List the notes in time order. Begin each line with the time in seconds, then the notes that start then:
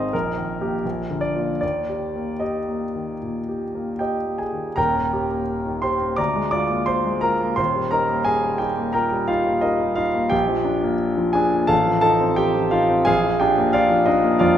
Already playing: G#1 D#3 C4 G#4 D#5 F5
0.13 A#1 A#4
0.37 D#3
0.61 A#3 G4
0.85 A#1
1.10 D3
1.21 D5
1.35 A#3 F4
1.61 D#2 D5
1.89 G4
2.16 A#3
2.40 G4 D#5
2.69 A#3
2.96 D#3
3.23 A#2
3.49 G4
3.75 A#3
3.99 G4 D#5 G5
4.26 A#3
4.38 G#4 G#5
4.53 D#3
4.76 D#1 D#2 A#4 G5 A#5
4.96 D#3
5.13 G4
5.31 A#3
5.66 D#3
5.82 G4 C5 C6
6.02 A#3
6.16 D2 D5 A#5 D6
6.36 G#3
6.51 F4 D5 D6
6.70 A#3
6.86 C5 C6
7.05 G#3
7.21 F4 A#4 A#5
7.41 A#3
7.56 D#1 D#2 C5 C6
7.76 G3
7.91 D#4 A#4 A#5
8.09 A#3
8.25 G#4 G#5
8.43 G3
8.58 D#4 G4 G5
8.78 A#3
8.93 A#2 A#4 G5 A#5
9.12 G3
9.28 D#4 F4 F5
9.47 A#3
9.61 D#4 A#4 D#5
9.80 G3
9.96 D#4 F4 F5
10.14 A#3
10.30 A#1 G4 G5
10.48 F3
10.65 D4
10.83 A#3
11.17 F3
11.33 D4 G#4 G#5
11.52 A#3
11.67 A1 A4 F5 A5
11.86 F3
12.01 D#4 A4 A5
12.20 C4
12.36 G4 G5
12.55 F3
12.71 D#4 F4 F5
12.89 C4
13.05 A#1 G#4 F5 G#5
13.24 F3
13.40 D4 G4 G5
13.58 A#3
13.73 F4 D5 F5
13.90 F3
14.06 D4 D#4 D#5
14.24 A#3
14.39 F2 F4 D5 F5